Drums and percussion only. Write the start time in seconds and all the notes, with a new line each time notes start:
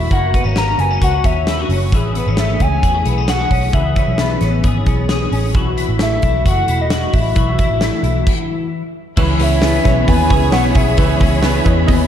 0.11 kick, closed hi-hat
0.34 kick, closed hi-hat
0.56 snare, closed hi-hat
0.79 closed hi-hat
1.02 kick, closed hi-hat
1.24 kick, closed hi-hat
1.47 snare, closed hi-hat
1.70 open hi-hat
1.92 kick, closed hi-hat
2.15 closed hi-hat
2.37 snare, closed hi-hat
2.60 kick, closed hi-hat
2.83 kick, closed hi-hat
3.05 closed hi-hat
3.28 snare, closed hi-hat
3.51 kick, open hi-hat
3.73 kick, closed hi-hat
3.96 kick, closed hi-hat
4.18 snare, closed hi-hat
4.41 snare, closed hi-hat
4.64 kick, closed hi-hat
4.86 kick, closed hi-hat
5.09 snare, closed hi-hat
5.32 open hi-hat
5.55 kick, closed hi-hat
5.78 closed hi-hat
5.99 snare, closed hi-hat
6.22 kick, closed hi-hat
6.46 kick, closed hi-hat
6.68 closed hi-hat
6.90 snare, closed hi-hat
7.13 kick, open hi-hat
7.36 kick, closed hi-hat
7.59 kick, closed hi-hat
7.81 snare, closed hi-hat
8.04 closed hi-hat
8.27 kick, crash
9.17 kick, crash
9.40 hi-hat pedal, open hi-hat
9.62 snare, hi-hat pedal, open hi-hat
9.85 kick, snare, hi-hat pedal, open hi-hat
10.08 kick, hi-hat pedal, open hi-hat
10.30 kick, hi-hat pedal, open hi-hat
10.52 snare, hi-hat pedal, open hi-hat
10.75 kick, hi-hat pedal, open hi-hat
10.97 kick, hi-hat pedal, open hi-hat
11.20 kick, hi-hat pedal, open hi-hat
11.43 snare, hi-hat pedal, open hi-hat
11.65 kick, hi-hat pedal, open hi-hat
11.88 kick, hi-hat pedal, open hi-hat